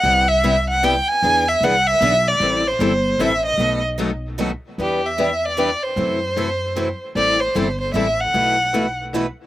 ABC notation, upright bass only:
X:1
M:3/4
L:1/8
Q:"Swing" 1/4=152
K:Em
V:1 name="Upright bass" clef=bass
C,,6 | E,,2 C,,2 B,,,2 | A,,,2 G,,,2 A,,,2 | B,,,6 |
E,,6 | F,,6 | A,,,2 G,,,2 A,,,2 | B,,,6 |]